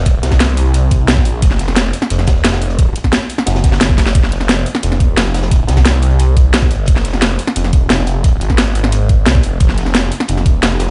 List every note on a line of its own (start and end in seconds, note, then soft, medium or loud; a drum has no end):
0.00 0.22 F1 loud
0.05 kick loud
0.05 closed hi-hat medium
0.23 1.06 C2 medium
0.23 snare loud
0.23 closed hi-hat medium
0.31 kick medium
0.31 snare loud
0.31 snare soft
0.31 closed hi-hat medium
0.40 snare loud
0.40 closed hi-hat medium
0.49 closed hi-hat soft
0.57 closed hi-hat medium
0.57 open hi-hat medium
0.65 closed hi-hat soft
0.74 closed hi-hat loud
0.74 closed hi-hat medium
0.91 kick loud
0.91 closed hi-hat medium
1.06 1.41 B1 medium
1.06 snare loud
1.06 closed hi-hat medium
1.17 kick loud
1.17 snare medium
1.25 closed hi-hat medium
1.25 open hi-hat medium
1.42 1.92 F1 loud
1.42 kick loud
1.42 closed hi-hat loud
1.42 closed hi-hat medium
1.51 snare soft
1.59 snare soft
1.59 closed hi-hat medium
1.59 open hi-hat medium
1.68 snare soft
1.76 snare loud
1.76 closed hi-hat loud
1.76 closed hi-hat medium
1.93 closed hi-hat medium
1.93 open hi-hat medium
2.02 snare medium
2.10 2.26 F1 loud
2.10 closed hi-hat medium
2.10 closed hi-hat loud
2.19 snare soft
2.27 2.43 D#1 loud
2.27 kick loud
2.27 snare loud
2.27 closed hi-hat medium
2.36 snare soft
2.45 2.94 F1 loud
2.45 snare loud
2.45 closed hi-hat loud
2.45 closed hi-hat medium
2.53 snare loud
2.53 closed hi-hat medium
2.61 snare soft
2.61 open hi-hat medium
2.70 closed hi-hat medium
2.78 kick loud
2.78 closed hi-hat medium
2.78 closed hi-hat loud
2.96 closed hi-hat medium
3.04 kick medium
3.04 snare soft
3.12 snare loud
3.12 closed hi-hat medium
3.21 closed hi-hat soft
3.29 closed hi-hat medium
3.29 open hi-hat medium
3.38 snare medium
3.46 4.14 F#1 loud
3.46 snare loud
3.46 closed hi-hat loud
3.46 closed hi-hat medium
3.55 snare loud
3.55 closed hi-hat medium
3.64 kick loud
3.64 snare loud
3.64 closed hi-hat medium
3.72 snare loud
3.72 snare soft
3.72 closed hi-hat medium
3.80 snare loud
3.80 closed hi-hat medium
3.80 closed hi-hat loud
3.89 kick loud
3.89 snare medium
3.98 kick medium
3.98 snare soft
3.98 snare medium
3.98 open hi-hat medium
4.06 snare medium
4.06 snare soft
4.15 4.65 F1 loud
4.15 kick loud
4.15 closed hi-hat loud
4.15 closed hi-hat medium
4.24 snare soft
4.32 snare soft
4.32 closed hi-hat medium
4.32 open hi-hat medium
4.40 snare soft
4.49 snare loud
4.49 closed hi-hat loud
4.66 closed hi-hat medium
4.66 open hi-hat medium
4.75 snare medium
4.83 4.99 F1 loud
4.83 closed hi-hat loud
4.83 closed hi-hat medium
4.92 snare soft
5.00 5.16 D#1 loud
5.00 kick loud
5.00 closed hi-hat medium
5.17 5.67 F1 loud
5.17 snare loud
5.17 closed hi-hat medium
5.17 closed hi-hat loud
5.26 snare soft
5.34 snare loud
5.34 closed hi-hat medium
5.34 open hi-hat medium
5.42 snare loud
5.42 closed hi-hat medium
5.51 kick loud
5.51 closed hi-hat medium
5.51 closed hi-hat loud
5.68 6.86 C2 loud
5.68 snare loud
5.68 closed hi-hat medium
5.77 kick medium
5.77 snare loud
5.77 snare soft
5.77 closed hi-hat medium
5.85 snare loud
5.85 closed hi-hat medium
5.85 closed hi-hat loud
6.02 closed hi-hat medium
6.02 open hi-hat medium
6.10 closed hi-hat soft
6.19 closed hi-hat medium
6.37 kick loud
6.37 closed hi-hat medium
6.53 snare loud
6.53 closed hi-hat medium
6.53 closed hi-hat loud
6.62 kick loud
6.62 snare medium
6.71 closed hi-hat medium
6.71 open hi-hat medium
6.86 closed hi-hat medium
6.88 7.38 F1 loud
6.88 kick loud
6.88 closed hi-hat medium
6.96 snare soft
7.04 snare soft
7.04 closed hi-hat medium
7.04 open hi-hat medium
7.13 snare soft
7.21 snare loud
7.21 closed hi-hat medium
7.39 closed hi-hat medium
7.39 open hi-hat medium
7.47 snare medium
7.56 7.72 F1 loud
7.56 closed hi-hat medium
7.64 snare soft
7.73 7.89 D#1 medium
7.73 kick loud
7.73 closed hi-hat medium
7.89 8.40 F1 loud
7.89 snare loud
7.89 closed hi-hat loud
7.89 closed hi-hat medium
7.99 snare medium
8.06 closed hi-hat medium
8.06 open hi-hat medium
8.24 kick loud
8.24 closed hi-hat medium
8.41 9.25 G#1 loud
8.41 closed hi-hat medium
8.50 kick medium
8.50 snare soft
8.58 snare loud
8.58 closed hi-hat medium
8.67 closed hi-hat soft
8.75 closed hi-hat medium
8.75 open hi-hat medium
8.84 snare medium
8.84 closed hi-hat soft
8.92 closed hi-hat loud
8.92 closed hi-hat medium
9.09 kick loud
9.09 closed hi-hat medium
9.26 9.42 C2 loud
9.26 snare loud
9.26 closed hi-hat medium
9.35 kick loud
9.35 snare medium
9.43 9.59 F1 loud
9.43 closed hi-hat medium
9.43 open hi-hat medium
9.60 10.10 F1 loud
9.60 kick loud
9.60 closed hi-hat medium
9.69 snare soft
9.77 snare soft
9.77 closed hi-hat medium
9.77 open hi-hat medium
9.86 snare soft
9.94 snare loud
9.94 closed hi-hat medium
10.12 closed hi-hat medium
10.12 open hi-hat medium
10.20 snare medium
10.28 10.44 F1 medium
10.28 closed hi-hat loud
10.28 closed hi-hat medium
10.37 snare soft
10.46 10.61 D#1 medium
10.46 kick loud
10.46 closed hi-hat medium
10.63 10.90 F1 loud
10.63 snare loud
10.63 closed hi-hat medium
10.71 snare medium
10.79 snare loud
10.79 closed hi-hat medium
10.79 open hi-hat medium